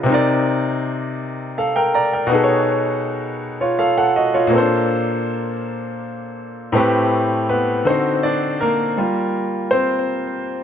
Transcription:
Already playing: D#5
0.03 C3 C4
0.09 D#4 A#4
0.14 D5
1.58 A4 F5
1.76 A#4 G5
1.94 D5 A#5
2.13 A#4 G5
2.27 B2 B3
2.31 D#4 G#4 A4
2.38 B4
2.44 C#5
3.61 F4 C#5
3.79 A4 F5
3.98 A4 F#5
4.16 F#4 D#5
4.34 F4 C#5
4.47 A#2 A#3
4.53 C4 A4
4.58 D4 C5
6.72 A2 A3 C4
6.77 G4 B4
7.49 B3 B4
7.85 D3 C4 D#4 F#4 A4 C5
7.90 C5
8.23 D4 D5
8.61 A#3 A#4
8.97 G3 A#3 F4
9.71 C4 C5

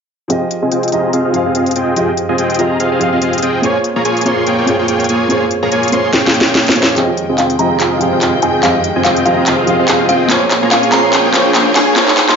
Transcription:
0.28 F3 C4 F4 G4 G#4 D#5 G5, closed hi-hat
0.32 D#5
0.51 closed hi-hat
0.62 C4 F4 G#4 D#5 G#5
0.72 C4 F4 G#4 D#5 G5, closed hi-hat
0.83 closed hi-hat
0.88 F3, closed hi-hat
0.92 C4 F4 G4 G#4 D#5 A#5, closed hi-hat
1.13 C4 F4 G#4 D#5 F5, closed hi-hat
1.25 C4 F4 G#4 D#5 F5
1.32 F3 F4 G4 G#4, closed hi-hat
1.36 F5
1.46 C4 F4 G#4 D#5 F5
1.55 C4 F4 G#4 D#5 F5, closed hi-hat
1.66 closed hi-hat
1.71 closed hi-hat
1.76 C4 F4 G#4 D#5 G5, closed hi-hat
1.95 F3 C4 F4 G4 G#4 D#5 G5, closed hi-hat
2.17 closed hi-hat
2.29 C4 F4 G#4 D#5 G#5
2.38 C4 F4 G#4 D#5 G5, closed hi-hat
2.50 closed hi-hat
2.54 F3, closed hi-hat
2.59 C4 F4 G4 G#4 D#5 A#5, closed hi-hat
2.80 C4 F4 G#4 D#5 F5, closed hi-hat
2.92 C4 F4 G#4 D#5 F5
2.99 F3 F4 G4 G#4, closed hi-hat
3.03 F5
3.12 C4 F4 G#4 D#5 F5
3.22 C4 F4 G#4 D#5 F5, closed hi-hat
3.33 closed hi-hat
3.38 closed hi-hat
3.42 C4 F4 G#4 D#5 G5, closed hi-hat
3.62 A#3 F4 G#4 C5 C#5 G#5, closed hi-hat
3.84 closed hi-hat
3.96 A#3 F4 G#4 C#5 A#5
4.05 A#3 F4 G#4 C#5 G#5, closed hi-hat
4.17 closed hi-hat
4.21 A#3, closed hi-hat
4.26 A#3 F4 G#4 C5 C#5 C6, closed hi-hat
4.47 A#3 F4 G#4 C#5 G5, closed hi-hat
4.58 A#3 F4 G#4 C#5 G5
4.66 A#3 F4 G#4 C5, closed hi-hat
4.70 C#5
4.79 A#3 F4 G#4 C#5 G5
4.88 A#3 F4 G#4 C#5 G5, closed hi-hat
5.00 closed hi-hat
5.04 closed hi-hat
5.09 A#3 F4 G#4 C#5 G#5, closed hi-hat
5.28 A#3 F4 G#4 C5 C#5 G#5, closed hi-hat
5.51 closed hi-hat
5.63 A#3 F4 G#4 C#5 A#5
5.72 A#3 F4 G#4 C#5 G#5, closed hi-hat
5.83 closed hi-hat
5.88 A#3, closed hi-hat
5.92 A#3 F4 G#4 C5 C#5 C6, closed hi-hat
6.13 A#3 F4 G#4 C#5 G5, snare, closed hi-hat
6.25 A#3 F4 G#4 C#5 G5, snare
6.34 closed hi-hat
6.41 snare
6.46 A#3 F4 G#4 C#5 G5
6.55 A#3 F4 G#4 C#5 G5, snare, closed hi-hat
6.66 snare, closed hi-hat
6.71 A#3, closed hi-hat
6.76 A#3 F4 G#4 C5 C#5 G#5, closed hi-hat
6.83 snare
6.95 F2 D#3 F3 G#3 C4 F4 G4 G#4 D#5 G5, clap, closed hi-hat, riser
6.99 D#5
7.17 closed hi-hat
7.29 C4 F4 G#4 D#5 G#5
7.38 C4 F4 G#4 D#5 F5 G5, clap, closed hi-hat
7.50 closed hi-hat
7.58 F3 C4 F4 G4 G#4 D#5 A#5, closed hi-hat
7.80 C4 F4 G#4 D#5 F5, clap, closed hi-hat
7.91 C4 F4 G#4 D#5 F5
7.99 F3 F4 G4 G#4, closed hi-hat
8.03 F5
8.12 C4 F4 G#4 D#5 F5
8.22 C4 F4 G#4 D#5 F5, clap, closed hi-hat
8.42 C4 F4 G#4 D#5 G5 G#5, closed hi-hat
8.62 F3 C4 F4 G4 G#4 D#5 F5 G5, clap, closed hi-hat
8.75 F5
8.84 closed hi-hat
8.96 C4 F4 G#4 D#5 G#5
9.04 C4 F4 G#4 D#5 F5 G5, clap, closed hi-hat
9.16 closed hi-hat
9.25 F3 C4 F4 G4 G#4 D#5 F5 A#5, closed hi-hat
9.46 C4 F4 G#4 D#5 F5, clap, closed hi-hat
9.58 C4 F4 G#4 D#5 F5
9.66 F3 F4 G4 G#4, closed hi-hat
9.70 F5
9.79 C4 F4 G#4 D#5 F5
9.88 C4 F4 G#4 D#5 F5, clap, closed hi-hat
10.09 C4 F4 G#4 D#5 F5 G5, closed hi-hat
10.28 A#2 F3 A#3 C#4 F4 G#4 C5 C#5 G#5, clap, closed hi-hat
10.32 C#5
10.51 clap, closed hi-hat
10.63 A#3 F4 G#4 C#5 A#5
10.71 A#3 F4 G#4 C#5 F5 G#5, clap, closed hi-hat
10.83 closed hi-hat
10.92 A#3 F4 G#4 C5 C#5 A#5 C6, clap, closed hi-hat
11.13 A#3 F4 G#4 C#5 G5, clap, closed hi-hat
11.25 A#3 F4 G#4 C#5 G5
11.32 A#3 F4 G#4 C5 C#5, clap, closed hi-hat
11.46 A#3 F4 G#4 C#5 G5
11.55 A#3 F4 G#4 C#5 G5, clap, closed hi-hat
11.76 A#3 F4 G#4 C#5 G#5, clap, closed hi-hat
11.95 A#3 F4 G#4 C5 C#5 G#5, clap, closed hi-hat
11.99 C#5
12.08 clap
12.17 clap, closed hi-hat
12.29 A#3 F4 G#4 C#5 A#5 C6, clap

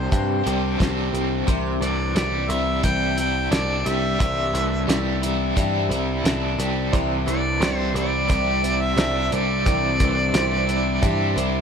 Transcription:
Already playing: C3 G3 C4 D4 G4 C5
0.11 G2 C3 G3 C4 D4 G4, kick, closed hi-hat
0.46 C2 C3 G3 C4 D4 G4, closed hi-hat
0.79 C2 C3 G3 C4 D4 G4, kick, snare, closed hi-hat
1.13 C2 C4 D4 G4, closed hi-hat
1.47 C2 C3 E3 G3 C4 D4 G4, kick, closed hi-hat
1.80 C2 E3 G3 C4 D4 G4 D5, closed hi-hat
2.15 C2 G3 C4 D4 G4 D5, snare, closed hi-hat
2.48 C2 G3 C4 D4 E4 G4 E5, closed hi-hat
2.83 C2 C3 E3 G3 C4 D4 G4 G5, kick, closed hi-hat
3.17 G3 C4 D4 E4 G4 G5, closed hi-hat
3.51 C2 G3 C4 D4 G4 D5, snare, closed hi-hat
3.86 C2 G3 C4 D4 G4 E5, closed hi-hat
4.20 C2 C3 E3 G3 C4 D4 G4, kick, closed hi-hat
4.53 C2 E3 C4 D4 G4, closed hi-hat
4.57 G3
4.88 C2 G3 C4 D4 G4, snare, closed hi-hat
5.22 G3 C4 D4 E4 G4, closed hi-hat
5.56 G2 C3 E3 G3 C4 D4 G4, kick, closed hi-hat
5.89 C2 G3 C4 D4 E4 G4, closed hi-hat
6.24 C2 G3 C4 D4 G4, snare, closed hi-hat
6.58 C2 G3 C4 D4 G4, closed hi-hat
6.92 C2 C3 E3 G3 C4 D4 E4 G4 C5 D5, kick, closed hi-hat
7.26 C2 E3 G3 C4 D4 G4, closed hi-hat
7.30 D5
7.60 C2 G3 C4 D4 E4 G4 C5 D5, snare, closed hi-hat
7.77 C5
7.94 C2 G3 C4 D4 E4 G4, closed hi-hat
7.99 D5
8.28 C2 C3 E3 G3 C4 D4 E4 G4 C5 D5, kick, closed hi-hat
8.62 G3 C4 D4 E4 G4 C5 D5, closed hi-hat
8.82 E5
8.95 C2 G3 C4 D4 E4 G4 C5 D5, snare, closed hi-hat
9.31 C2 G3 C4 D4 G4 D5, closed hi-hat
9.65 C2 C3 E3 G3 C4 D4 E4 G4 C5 D5, kick, closed hi-hat
10.00 C2 E3 G3 C4 D4 G4, kick, closed hi-hat
10.34 C2 G3 C4 D4 E4 G4 C5 D5, snare, closed hi-hat
10.68 G3 C4 D4 E4 G4, closed hi-hat
11.02 G2 C3 E3 G3 C4 D4 E4 G4 C5 E5, kick, closed hi-hat
11.36 C2 G3 C4 D4 E4 G4 C5 E5, closed hi-hat

